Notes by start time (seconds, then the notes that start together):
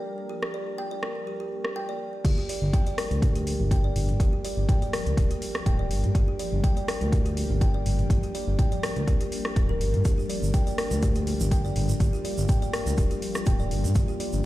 Already playing: F3 G3 A#3 D4 A#4
0.29 G4
0.42 G4, cross-stick
0.54 D5
0.78 G5
0.91 D5
1.03 A#4, cross-stick
1.27 G4
1.40 G4
1.65 cross-stick
1.76 G5
1.89 D5
2.24 G1 F3 G3 A#3 D4 G4, kick, closed hi-hat, crash
2.38 G4
2.49 D5, open hi-hat
2.62 G1
2.73 G5, kick, closed hi-hat
2.87 D5, closed hi-hat
2.98 A#4, cross-stick, open hi-hat
3.11 D2, closed hi-hat
3.22 G4, kick, closed hi-hat, mid tom
3.35 G4, closed hi-hat
3.47 open hi-hat
3.60 G1
3.71 G5, kick, closed hi-hat
3.84 D5
3.96 G1, mid tom, open hi-hat
4.09 closed hi-hat, mid tom
4.20 G1 G4, kick, closed hi-hat
4.33 G4
4.45 D5, open hi-hat
4.57 G1
4.69 G5, kick, closed hi-hat, mid tom
4.82 D5, closed hi-hat
4.93 A#4, cross-stick, open hi-hat
5.06 D2, closed hi-hat
5.17 D1 G4, kick, closed hi-hat
5.31 G4, closed hi-hat
5.42 open hi-hat
5.55 cross-stick
5.66 D1 G5, kick, closed hi-hat, mid tom
5.79 D5
5.91 G1, open hi-hat
6.04 G2, closed hi-hat, mid tom
6.15 G1 G4, kick, closed hi-hat
6.28 G4
6.39 D5, open hi-hat
6.52 G1
6.64 G5, kick, closed hi-hat
6.77 D5, closed hi-hat
6.88 A#4, cross-stick, open hi-hat
7.01 D2, closed hi-hat
7.12 G4, kick, closed hi-hat, mid tom
7.26 G4, closed hi-hat
7.37 open hi-hat
7.50 G1
7.61 G5, kick, closed hi-hat
7.74 D5
7.86 G1, mid tom, open hi-hat
7.99 closed hi-hat, mid tom
8.10 G1 G4, kick, closed hi-hat
8.23 G4, closed hi-hat
8.35 D5, open hi-hat
8.48 G1
8.59 G5, kick, closed hi-hat, mid tom
8.72 D5, closed hi-hat
8.83 A#4, cross-stick, open hi-hat
8.96 D2, closed hi-hat
9.07 D1 G4, kick, closed hi-hat
9.21 G4, closed hi-hat
9.32 open hi-hat
9.45 cross-stick
9.56 D1 D4, kick, closed hi-hat, mid tom
9.69 A#4
9.81 G1, open hi-hat
9.93 G2, closed hi-hat, mid tom
10.05 G1 F4 G4, kick, closed hi-hat, shaker
10.18 G4, shaker
10.29 D5, open hi-hat
10.42 G1, shaker
10.54 G5, kick, closed hi-hat, shaker
10.67 D5, closed hi-hat, shaker
10.78 A#4, cross-stick, open hi-hat
10.91 D2, closed hi-hat, shaker
11.03 G4, kick, closed hi-hat, mid tom, shaker
11.15 G4, closed hi-hat, shaker
11.27 open hi-hat
11.40 G1, shaker
11.51 G5, kick, closed hi-hat, shaker
11.65 D5, shaker
11.76 G1, mid tom, open hi-hat
11.89 closed hi-hat, mid tom, shaker
12.00 G1 G4, kick, closed hi-hat, shaker
12.13 G4, shaker
12.25 D5, open hi-hat
12.38 G1, shaker
12.49 G5, kick, closed hi-hat, mid tom, shaker
12.62 D5, closed hi-hat, shaker
12.73 A#4, cross-stick, open hi-hat
12.86 D2, closed hi-hat, shaker
12.98 D1 G4, kick, closed hi-hat, shaker
13.11 G4, closed hi-hat, shaker
13.22 open hi-hat
13.35 cross-stick, shaker
13.46 D1 G5, kick, closed hi-hat, mid tom, shaker
13.59 D5, shaker
13.71 G1, open hi-hat
13.84 G2, closed hi-hat, mid tom, shaker
13.95 G1 G4, kick, closed hi-hat, shaker
14.08 G4, shaker
14.20 D5, open hi-hat
14.32 G1, shaker